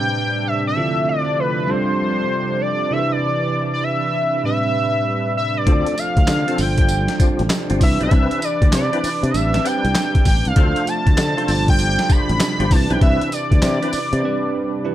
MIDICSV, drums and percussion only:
0, 0, Header, 1, 2, 480
1, 0, Start_track
1, 0, Tempo, 612245
1, 602, Time_signature, 4, 2, 24, 8
1, 11720, End_track
2, 0, Start_track
2, 0, Title_t, "Drums"
2, 4443, Note_on_c, 9, 36, 115
2, 4443, Note_on_c, 9, 42, 90
2, 4521, Note_off_c, 9, 42, 0
2, 4522, Note_off_c, 9, 36, 0
2, 4598, Note_on_c, 9, 42, 60
2, 4676, Note_off_c, 9, 42, 0
2, 4685, Note_on_c, 9, 54, 70
2, 4686, Note_on_c, 9, 42, 72
2, 4763, Note_off_c, 9, 54, 0
2, 4764, Note_off_c, 9, 42, 0
2, 4835, Note_on_c, 9, 36, 97
2, 4835, Note_on_c, 9, 42, 53
2, 4914, Note_off_c, 9, 36, 0
2, 4914, Note_off_c, 9, 42, 0
2, 4919, Note_on_c, 9, 42, 72
2, 4920, Note_on_c, 9, 38, 119
2, 4920, Note_on_c, 9, 39, 98
2, 4920, Note_on_c, 9, 54, 99
2, 4997, Note_off_c, 9, 42, 0
2, 4998, Note_off_c, 9, 38, 0
2, 4998, Note_off_c, 9, 54, 0
2, 4999, Note_off_c, 9, 39, 0
2, 5080, Note_on_c, 9, 42, 54
2, 5158, Note_off_c, 9, 42, 0
2, 5160, Note_on_c, 9, 54, 70
2, 5161, Note_on_c, 9, 46, 74
2, 5239, Note_off_c, 9, 54, 0
2, 5240, Note_off_c, 9, 46, 0
2, 5312, Note_on_c, 9, 42, 69
2, 5317, Note_on_c, 9, 36, 92
2, 5391, Note_off_c, 9, 42, 0
2, 5396, Note_off_c, 9, 36, 0
2, 5398, Note_on_c, 9, 42, 70
2, 5400, Note_on_c, 9, 54, 73
2, 5477, Note_off_c, 9, 42, 0
2, 5478, Note_off_c, 9, 54, 0
2, 5554, Note_on_c, 9, 38, 66
2, 5554, Note_on_c, 9, 42, 59
2, 5632, Note_off_c, 9, 38, 0
2, 5632, Note_off_c, 9, 42, 0
2, 5643, Note_on_c, 9, 36, 96
2, 5643, Note_on_c, 9, 42, 73
2, 5643, Note_on_c, 9, 54, 70
2, 5721, Note_off_c, 9, 36, 0
2, 5721, Note_off_c, 9, 42, 0
2, 5721, Note_off_c, 9, 54, 0
2, 5794, Note_on_c, 9, 42, 47
2, 5873, Note_off_c, 9, 42, 0
2, 5879, Note_on_c, 9, 38, 124
2, 5879, Note_on_c, 9, 42, 71
2, 5879, Note_on_c, 9, 54, 93
2, 5880, Note_on_c, 9, 39, 101
2, 5957, Note_off_c, 9, 54, 0
2, 5958, Note_off_c, 9, 38, 0
2, 5958, Note_off_c, 9, 39, 0
2, 5958, Note_off_c, 9, 42, 0
2, 6035, Note_on_c, 9, 42, 60
2, 6113, Note_off_c, 9, 42, 0
2, 6122, Note_on_c, 9, 36, 100
2, 6122, Note_on_c, 9, 46, 91
2, 6122, Note_on_c, 9, 54, 68
2, 6201, Note_off_c, 9, 36, 0
2, 6201, Note_off_c, 9, 46, 0
2, 6201, Note_off_c, 9, 54, 0
2, 6277, Note_on_c, 9, 42, 58
2, 6355, Note_off_c, 9, 42, 0
2, 6360, Note_on_c, 9, 42, 86
2, 6362, Note_on_c, 9, 36, 127
2, 6438, Note_off_c, 9, 42, 0
2, 6440, Note_off_c, 9, 36, 0
2, 6516, Note_on_c, 9, 42, 53
2, 6594, Note_off_c, 9, 42, 0
2, 6602, Note_on_c, 9, 54, 75
2, 6603, Note_on_c, 9, 42, 78
2, 6680, Note_off_c, 9, 54, 0
2, 6681, Note_off_c, 9, 42, 0
2, 6756, Note_on_c, 9, 36, 101
2, 6757, Note_on_c, 9, 42, 52
2, 6834, Note_off_c, 9, 36, 0
2, 6835, Note_off_c, 9, 42, 0
2, 6840, Note_on_c, 9, 42, 74
2, 6841, Note_on_c, 9, 38, 122
2, 6841, Note_on_c, 9, 39, 99
2, 6841, Note_on_c, 9, 54, 98
2, 6918, Note_off_c, 9, 42, 0
2, 6919, Note_off_c, 9, 38, 0
2, 6919, Note_off_c, 9, 54, 0
2, 6920, Note_off_c, 9, 39, 0
2, 7002, Note_on_c, 9, 42, 54
2, 7080, Note_off_c, 9, 42, 0
2, 7086, Note_on_c, 9, 54, 69
2, 7087, Note_on_c, 9, 46, 70
2, 7164, Note_off_c, 9, 54, 0
2, 7165, Note_off_c, 9, 46, 0
2, 7240, Note_on_c, 9, 42, 63
2, 7318, Note_off_c, 9, 42, 0
2, 7325, Note_on_c, 9, 42, 68
2, 7326, Note_on_c, 9, 54, 64
2, 7404, Note_off_c, 9, 42, 0
2, 7405, Note_off_c, 9, 54, 0
2, 7481, Note_on_c, 9, 38, 71
2, 7481, Note_on_c, 9, 42, 59
2, 7559, Note_off_c, 9, 38, 0
2, 7559, Note_off_c, 9, 42, 0
2, 7569, Note_on_c, 9, 54, 65
2, 7570, Note_on_c, 9, 42, 73
2, 7648, Note_off_c, 9, 42, 0
2, 7648, Note_off_c, 9, 54, 0
2, 7720, Note_on_c, 9, 42, 55
2, 7798, Note_off_c, 9, 42, 0
2, 7802, Note_on_c, 9, 38, 122
2, 7802, Note_on_c, 9, 42, 68
2, 7802, Note_on_c, 9, 54, 96
2, 7803, Note_on_c, 9, 39, 99
2, 7880, Note_off_c, 9, 54, 0
2, 7881, Note_off_c, 9, 38, 0
2, 7881, Note_off_c, 9, 39, 0
2, 7881, Note_off_c, 9, 42, 0
2, 7957, Note_on_c, 9, 42, 60
2, 7958, Note_on_c, 9, 36, 93
2, 8035, Note_off_c, 9, 42, 0
2, 8036, Note_off_c, 9, 36, 0
2, 8039, Note_on_c, 9, 46, 88
2, 8039, Note_on_c, 9, 54, 68
2, 8042, Note_on_c, 9, 36, 94
2, 8117, Note_off_c, 9, 46, 0
2, 8117, Note_off_c, 9, 54, 0
2, 8120, Note_off_c, 9, 36, 0
2, 8194, Note_on_c, 9, 42, 58
2, 8272, Note_off_c, 9, 42, 0
2, 8279, Note_on_c, 9, 42, 92
2, 8282, Note_on_c, 9, 36, 121
2, 8357, Note_off_c, 9, 42, 0
2, 8360, Note_off_c, 9, 36, 0
2, 8437, Note_on_c, 9, 42, 58
2, 8515, Note_off_c, 9, 42, 0
2, 8523, Note_on_c, 9, 54, 65
2, 8524, Note_on_c, 9, 42, 74
2, 8602, Note_off_c, 9, 54, 0
2, 8603, Note_off_c, 9, 42, 0
2, 8676, Note_on_c, 9, 36, 102
2, 8676, Note_on_c, 9, 42, 49
2, 8754, Note_off_c, 9, 36, 0
2, 8754, Note_off_c, 9, 42, 0
2, 8761, Note_on_c, 9, 42, 75
2, 8762, Note_on_c, 9, 38, 127
2, 8762, Note_on_c, 9, 39, 99
2, 8762, Note_on_c, 9, 54, 103
2, 8839, Note_off_c, 9, 42, 0
2, 8840, Note_off_c, 9, 38, 0
2, 8840, Note_off_c, 9, 54, 0
2, 8841, Note_off_c, 9, 39, 0
2, 8923, Note_on_c, 9, 42, 58
2, 9001, Note_off_c, 9, 42, 0
2, 9002, Note_on_c, 9, 46, 71
2, 9002, Note_on_c, 9, 54, 72
2, 9080, Note_off_c, 9, 54, 0
2, 9081, Note_off_c, 9, 46, 0
2, 9158, Note_on_c, 9, 42, 66
2, 9159, Note_on_c, 9, 36, 89
2, 9237, Note_off_c, 9, 36, 0
2, 9237, Note_off_c, 9, 42, 0
2, 9241, Note_on_c, 9, 42, 71
2, 9242, Note_on_c, 9, 54, 67
2, 9319, Note_off_c, 9, 42, 0
2, 9320, Note_off_c, 9, 54, 0
2, 9399, Note_on_c, 9, 38, 77
2, 9399, Note_on_c, 9, 42, 59
2, 9478, Note_off_c, 9, 38, 0
2, 9478, Note_off_c, 9, 42, 0
2, 9483, Note_on_c, 9, 42, 69
2, 9483, Note_on_c, 9, 54, 67
2, 9484, Note_on_c, 9, 36, 102
2, 9562, Note_off_c, 9, 36, 0
2, 9562, Note_off_c, 9, 42, 0
2, 9562, Note_off_c, 9, 54, 0
2, 9639, Note_on_c, 9, 42, 53
2, 9717, Note_off_c, 9, 42, 0
2, 9723, Note_on_c, 9, 42, 74
2, 9723, Note_on_c, 9, 54, 99
2, 9724, Note_on_c, 9, 38, 124
2, 9724, Note_on_c, 9, 39, 99
2, 9801, Note_off_c, 9, 54, 0
2, 9802, Note_off_c, 9, 38, 0
2, 9802, Note_off_c, 9, 39, 0
2, 9802, Note_off_c, 9, 42, 0
2, 9879, Note_on_c, 9, 42, 59
2, 9957, Note_off_c, 9, 42, 0
2, 9963, Note_on_c, 9, 36, 95
2, 9964, Note_on_c, 9, 46, 92
2, 9964, Note_on_c, 9, 54, 69
2, 10041, Note_off_c, 9, 36, 0
2, 10043, Note_off_c, 9, 46, 0
2, 10043, Note_off_c, 9, 54, 0
2, 10116, Note_on_c, 9, 42, 58
2, 10195, Note_off_c, 9, 42, 0
2, 10203, Note_on_c, 9, 36, 127
2, 10204, Note_on_c, 9, 42, 87
2, 10281, Note_off_c, 9, 36, 0
2, 10282, Note_off_c, 9, 42, 0
2, 10360, Note_on_c, 9, 42, 51
2, 10438, Note_off_c, 9, 42, 0
2, 10444, Note_on_c, 9, 54, 71
2, 10445, Note_on_c, 9, 42, 78
2, 10522, Note_off_c, 9, 54, 0
2, 10523, Note_off_c, 9, 42, 0
2, 10595, Note_on_c, 9, 36, 101
2, 10598, Note_on_c, 9, 42, 49
2, 10673, Note_off_c, 9, 36, 0
2, 10676, Note_off_c, 9, 42, 0
2, 10680, Note_on_c, 9, 42, 76
2, 10681, Note_on_c, 9, 38, 119
2, 10681, Note_on_c, 9, 39, 101
2, 10681, Note_on_c, 9, 54, 102
2, 10758, Note_off_c, 9, 42, 0
2, 10759, Note_off_c, 9, 38, 0
2, 10759, Note_off_c, 9, 54, 0
2, 10760, Note_off_c, 9, 39, 0
2, 10839, Note_on_c, 9, 42, 58
2, 10918, Note_off_c, 9, 42, 0
2, 10919, Note_on_c, 9, 54, 72
2, 10920, Note_on_c, 9, 46, 74
2, 10997, Note_off_c, 9, 54, 0
2, 10998, Note_off_c, 9, 46, 0
2, 11076, Note_on_c, 9, 42, 63
2, 11154, Note_off_c, 9, 42, 0
2, 11720, End_track
0, 0, End_of_file